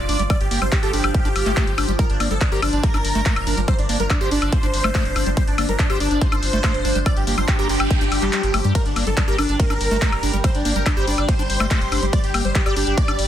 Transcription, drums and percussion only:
0.09 open hi-hat loud
0.19 closed hi-hat soft
0.30 kick loud
0.30 closed hi-hat medium
0.30 high woodblock medium
0.41 closed hi-hat soft
0.51 open hi-hat loud
0.62 closed hi-hat soft
0.62 high woodblock soft
0.72 kick loud
0.72 clap loud
0.72 closed hi-hat medium
0.83 closed hi-hat soft
0.93 open hi-hat loud
1.04 closed hi-hat soft
1.04 high woodblock medium
1.15 kick loud
1.15 closed hi-hat medium
1.25 closed hi-hat soft
1.36 open hi-hat loud
1.36 high woodblock soft
1.46 clap soft
1.46 closed hi-hat soft
1.57 kick loud
1.57 clap loud
1.57 closed hi-hat medium
1.67 closed hi-hat soft
1.78 open hi-hat loud
1.78 high woodblock medium
1.88 closed hi-hat soft
1.99 kick loud
1.99 closed hi-hat medium
2.10 closed hi-hat soft
2.20 open hi-hat loud
2.20 high woodblock soft
2.31 closed hi-hat soft
2.41 kick loud
2.41 clap loud
2.41 closed hi-hat medium
2.52 closed hi-hat soft
2.62 open hi-hat loud
2.62 high woodblock medium
2.73 closed hi-hat soft
2.84 kick loud
2.84 closed hi-hat medium
2.94 closed hi-hat soft
2.94 high woodblock soft
3.05 open hi-hat loud
3.15 closed hi-hat soft
3.26 kick loud
3.26 clap loud
3.26 closed hi-hat medium
3.36 closed hi-hat soft
3.36 high woodblock medium
3.47 open hi-hat loud
3.57 closed hi-hat soft
3.68 kick loud
3.68 closed hi-hat medium
3.68 high woodblock soft
3.79 closed hi-hat soft
3.89 open hi-hat loud
4.00 closed hi-hat soft
4.10 kick loud
4.10 clap loud
4.10 closed hi-hat medium
4.10 high woodblock medium
4.21 closed hi-hat soft
4.31 open hi-hat loud
4.42 closed hi-hat soft
4.42 high woodblock soft
4.53 kick loud
4.53 closed hi-hat medium
4.63 closed hi-hat soft
4.74 open hi-hat loud
4.84 clap soft
4.84 closed hi-hat soft
4.84 high woodblock medium
4.95 kick loud
4.95 clap loud
4.95 closed hi-hat medium
5.05 closed hi-hat soft
5.16 open hi-hat loud
5.16 high woodblock soft
5.26 closed hi-hat soft
5.37 kick loud
5.37 closed hi-hat medium
5.48 closed hi-hat soft
5.58 open hi-hat loud
5.58 high woodblock medium
5.69 closed hi-hat soft
5.79 kick loud
5.79 clap loud
5.79 closed hi-hat medium
5.90 closed hi-hat soft
5.90 high woodblock soft
6.00 open hi-hat loud
6.11 closed hi-hat soft
6.21 kick loud
6.21 closed hi-hat medium
6.32 closed hi-hat soft
6.32 high woodblock medium
6.43 open hi-hat loud
6.53 closed hi-hat soft
6.64 kick loud
6.64 clap loud
6.64 closed hi-hat medium
6.64 high woodblock soft
6.74 closed hi-hat soft
6.85 open hi-hat loud
6.95 closed hi-hat soft
7.06 kick loud
7.06 closed hi-hat medium
7.06 high woodblock medium
7.17 closed hi-hat soft
7.27 open hi-hat loud
7.38 closed hi-hat soft
7.38 high woodblock soft
7.48 kick loud
7.48 clap loud
7.48 closed hi-hat medium
7.59 closed hi-hat soft
7.69 open hi-hat loud
7.80 high woodblock medium
7.91 kick loud
7.91 closed hi-hat medium
8.01 closed hi-hat soft
8.12 open hi-hat loud
8.12 high woodblock soft
8.22 clap soft
8.22 closed hi-hat soft
8.33 clap loud
8.33 closed hi-hat medium
8.43 closed hi-hat soft
8.54 open hi-hat loud
8.54 high woodblock medium
8.64 closed hi-hat soft
8.75 kick loud
8.75 closed hi-hat medium
8.75 ride medium
8.86 closed hi-hat soft
8.96 open hi-hat loud
8.96 high woodblock soft
9.07 closed hi-hat soft
9.17 kick loud
9.17 clap loud
9.17 closed hi-hat medium
9.17 ride medium
9.28 closed hi-hat soft
9.38 open hi-hat loud
9.38 high woodblock medium
9.49 closed hi-hat soft
9.60 kick loud
9.60 closed hi-hat medium
9.60 ride medium
9.70 closed hi-hat soft
9.70 high woodblock soft
9.81 open hi-hat loud
9.91 closed hi-hat soft
10.02 kick loud
10.02 clap loud
10.02 closed hi-hat medium
10.02 ride medium
10.12 closed hi-hat soft
10.12 high woodblock medium
10.23 open hi-hat loud
10.34 closed hi-hat soft
10.44 kick loud
10.44 closed hi-hat medium
10.44 ride medium
10.44 high woodblock soft
10.55 closed hi-hat soft
10.65 open hi-hat loud
10.76 closed hi-hat soft
10.86 kick loud
10.86 clap loud
10.86 closed hi-hat medium
10.86 ride medium
10.86 high woodblock medium
10.97 closed hi-hat soft
11.07 open hi-hat loud
11.18 closed hi-hat soft
11.18 high woodblock soft
11.29 kick loud
11.29 closed hi-hat medium
11.29 ride medium
11.39 closed hi-hat soft
11.50 open hi-hat loud
11.60 clap soft
11.60 closed hi-hat soft
11.60 high woodblock medium
11.71 kick loud
11.71 clap loud
11.71 closed hi-hat medium
11.71 ride medium
11.81 closed hi-hat soft
11.92 open hi-hat loud
11.92 high woodblock soft
12.03 closed hi-hat soft
12.13 kick loud
12.13 closed hi-hat medium
12.13 ride medium
12.24 closed hi-hat soft
12.34 open hi-hat loud
12.34 high woodblock medium
12.45 closed hi-hat soft
12.55 kick loud
12.55 clap loud
12.55 closed hi-hat medium
12.55 ride medium
12.66 closed hi-hat soft
12.66 high woodblock soft
12.76 open hi-hat loud
12.87 closed hi-hat soft
12.98 kick loud
12.98 closed hi-hat medium
12.98 ride medium
13.08 closed hi-hat soft
13.08 high woodblock medium
13.19 open hi-hat loud

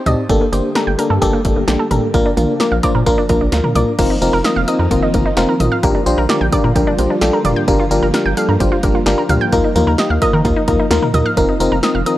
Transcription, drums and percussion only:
0.06 closed hi-hat medium
0.06 mid tom loud
0.29 kick loud
0.29 closed hi-hat medium
0.53 closed hi-hat medium
0.75 snare loud
0.75 closed hi-hat medium
0.99 closed hi-hat medium
1.22 kick medium
1.22 closed hi-hat medium
1.45 kick loud
1.45 closed hi-hat medium
1.68 snare loud
1.68 closed hi-hat medium
1.91 closed hi-hat medium
1.91 mid tom medium
2.14 kick loud
2.14 closed hi-hat medium
2.37 closed hi-hat medium
2.37 mid tom medium
2.60 snare loud
2.60 closed hi-hat medium
2.83 kick loud
2.83 closed hi-hat medium
2.83 cowbell medium
3.06 kick medium
3.06 closed hi-hat medium
3.29 kick loud
3.29 closed hi-hat medium
3.29 cowbell medium
3.52 snare loud
3.52 closed hi-hat medium
3.64 mid tom medium
3.75 closed hi-hat medium
3.75 mid tom medium
3.99 kick loud
3.99 closed hi-hat medium
3.99 crash loud
4.22 closed hi-hat medium
4.44 snare loud
4.44 closed hi-hat medium
4.68 closed hi-hat medium
4.91 kick medium
4.91 closed hi-hat medium
5.14 kick loud
5.14 closed hi-hat medium
5.37 snare loud
5.37 closed hi-hat medium
5.60 closed hi-hat medium
5.60 mid tom loud
5.83 kick loud
5.83 closed hi-hat medium
6.07 closed hi-hat medium
6.29 snare loud
6.29 closed hi-hat medium
6.52 kick medium
6.52 closed hi-hat medium
6.76 kick medium
6.76 closed hi-hat medium
6.99 closed hi-hat medium
7.21 snare loud
7.21 closed hi-hat medium
7.45 closed hi-hat medium
7.45 mid tom medium
7.68 kick loud
7.68 closed hi-hat medium
7.91 closed hi-hat medium
8.14 snare loud
8.14 closed hi-hat medium
8.37 closed hi-hat medium
8.60 kick medium
8.60 closed hi-hat medium
8.83 kick loud
8.83 closed hi-hat medium
9.06 snare loud
9.06 closed hi-hat medium
9.29 closed hi-hat medium
9.29 mid tom loud
9.52 kick loud
9.52 closed hi-hat medium
9.75 closed hi-hat medium
9.75 mid tom medium
9.98 snare loud
9.98 closed hi-hat medium
10.22 kick loud
10.22 closed hi-hat medium
10.22 cowbell medium
10.45 kick medium
10.45 closed hi-hat medium
10.68 kick loud
10.68 closed hi-hat medium
10.68 cowbell medium
10.91 snare loud
10.91 closed hi-hat medium
11.02 mid tom medium
11.14 closed hi-hat medium
11.14 mid tom loud
11.37 kick loud
11.37 closed hi-hat medium
11.60 closed hi-hat medium
11.83 snare loud
11.83 closed hi-hat medium
12.06 closed hi-hat medium

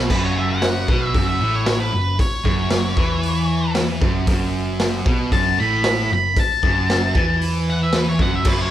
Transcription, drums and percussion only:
0.10 kick loud
0.10 crash loud
0.62 snare loud
0.62 open hi-hat medium
0.88 kick loud
1.15 kick loud
1.15 open hi-hat medium
1.66 snare loud
1.66 open hi-hat medium
2.19 kick loud
2.19 open hi-hat medium
2.45 kick medium
2.70 snare loud
2.70 open hi-hat medium
2.97 kick loud
3.23 open hi-hat medium
3.75 snare loud
3.75 open hi-hat medium
4.02 kick loud
4.27 kick loud
4.27 open hi-hat medium
4.80 snare loud
4.80 open hi-hat medium
5.06 kick loud
5.32 kick loud
5.32 open hi-hat medium
5.84 snare loud
5.84 open hi-hat medium
6.37 kick loud
6.37 open hi-hat medium
6.63 kick loud
6.90 snare loud
6.90 open hi-hat soft
7.15 kick loud
7.42 open hi-hat medium
7.93 snare loud
7.93 open hi-hat medium
8.19 kick loud
8.45 kick loud
8.45 tambourine soft
8.45 crash loud

